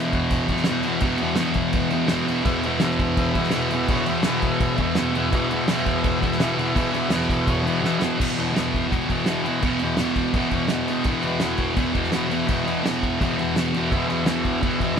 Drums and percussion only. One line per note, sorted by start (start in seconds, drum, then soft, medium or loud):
0.13 kick medium
0.13 crash medium
0.30 kick loud
0.30 crash medium
0.48 kick medium
0.48 crash medium
0.57 snare soft
0.64 snare loud
0.64 crash medium
0.83 crash medium
1.00 kick loud
1.00 crash loud
1.18 crash medium
1.36 snare loud
1.36 crash medium
1.54 kick medium
1.54 crash medium
1.73 kick loud
1.73 crash medium
1.90 crash medium
2.08 snare loud
2.08 crash medium
2.28 crash medium
2.45 kick loud
2.45 crash medium
2.63 crash medium
2.80 snare loud
2.80 crash medium
2.99 kick medium
2.99 crash medium
3.17 kick loud
3.17 crash medium
3.35 kick medium
3.35 crash medium
3.43 snare soft
3.51 snare loud
3.51 crash medium
3.71 crash medium
3.88 kick loud
3.88 crash loud
4.06 crash medium
4.23 snare loud
4.23 crash medium
4.42 kick medium
4.42 crash medium
4.60 kick loud
4.60 crash medium
4.78 kick medium
4.78 crash medium
4.95 snare loud
4.95 crash medium
5.15 crash medium
5.33 kick loud
5.33 crash medium
5.51 crash medium
5.68 snare loud
5.68 crash medium
5.77 snare soft
5.86 kick medium
5.86 crash medium
6.04 kick loud
6.04 crash medium
6.23 kick medium
6.23 crash medium
6.32 snare soft
6.40 snare loud
6.40 crash medium
6.59 crash medium
6.76 kick loud
6.76 crash medium
6.94 crash medium
7.10 snare loud
7.10 crash loud
7.20 snare soft
7.29 kick medium
7.29 crash medium
7.47 kick loud
7.47 crash medium
7.67 crash medium
7.85 snare medium
8.02 snare loud
8.20 kick loud
8.20 crash loud
8.20 crash medium
8.39 crash medium
8.56 snare loud
8.56 crash medium
8.74 kick medium
8.74 crash medium
8.92 kick loud
8.92 crash medium
9.10 kick medium
9.10 crash medium
9.26 snare loud
9.26 crash medium
9.46 crash medium
9.63 kick loud
9.63 crash medium
9.79 crash medium
9.97 snare loud
9.97 crash medium
10.16 kick medium
10.16 crash medium
10.34 kick loud
10.34 crash medium
10.51 kick medium
10.51 crash medium
10.68 snare loud
10.68 crash medium
10.88 crash medium
11.04 kick loud
11.04 crash medium
11.23 crash medium
11.40 snare loud
11.40 crash medium
11.58 kick medium
11.58 crash medium
11.76 kick loud
11.76 crash medium
11.95 kick medium
11.95 crash medium
12.04 snare soft
12.12 snare loud
12.12 crash medium
12.31 crash medium
12.48 kick loud
12.48 crash medium
12.67 crash medium
12.86 snare loud
12.86 crash medium
13.03 kick medium
13.03 crash medium
13.21 kick loud
13.21 crash medium
13.39 crash medium
13.56 snare loud
13.56 crash medium
13.74 crash medium
13.92 kick loud
13.92 crash medium
14.10 crash medium
14.26 snare loud
14.26 crash medium
14.45 kick medium
14.45 crash medium
14.63 kick loud
14.63 crash medium
14.80 kick medium
14.80 crash medium